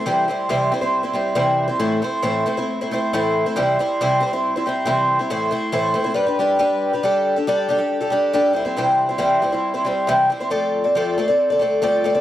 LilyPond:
\new Staff \with { instrumentName = "Twelve-string acoustic guitar" } { \time 4/4 \key c \major \tempo 4 = 138 <c e g c' e' c''>8 <g c' e' c''>8 <c e g c' e' c''>8 <g c' e' c''>16 <g c' e' c''>8 <g c' e' c''>16 <g c' e' c''>8 <c e g c' e' c''>8. <g c' e' c''>16 | <a, e a c' e' c''>8 <a c' e' c''>8 <a, e a c' e' c''>8 <a c' e' c''>16 <a c' e' c''>8 <a c' e' c''>16 <a c' e' c''>8 <a, e a c' e' c''>8. <a c' e' c''>16 | <c e g c' e' c''>8 <g c' e' c''>8 <c e g c' e' c''>8 <g c' e' c''>16 <g c' e' c''>8 <g c' e' c''>16 <g c' e' c''>8 <c e g c' e' c''>8. <g c' e' c''>16 | <a, e a c' e' c''>8 <a c' e' c''>8 <a, e a c' e' c''>8 <a c' e' c''>16 <a c' e' c''>16 <g d' g' b'>16 <d' g' b'>16 <g d' g' b'>8 <g d' g' b'>8. <d' g' b'>16 |
<g d' g' a'>8. <d' g' a'>16 <g d' g' a'>8 <g d' g' a'>16 <d' g' a'>8 <d' g' a'>16 <g d' g' a'>8 <g d' g' a'>8 <g c' e' c''>16 <g c' e' c''>16 | <c e g c' e' c''>8. <g c' e' c''>16 <c e g c' e' c''>8 <g c' e' c''>16 <g c' e' c''>8 <g c' e' c''>16 <g c' e' c''>8 <c e g c' e' c''>8 <g c' e' c''>16 <g c' e' c''>16 | <f a c' a' d''>8. <c' a' d''>16 <f a c' a' d''>8 <a c' a' d''>16 <c' a' d''>8 <c' a' d''>16 <a c' a' d''>8 <f a c' a' d''>8 <a c' a' d''>16 <c' a' d''>16 | }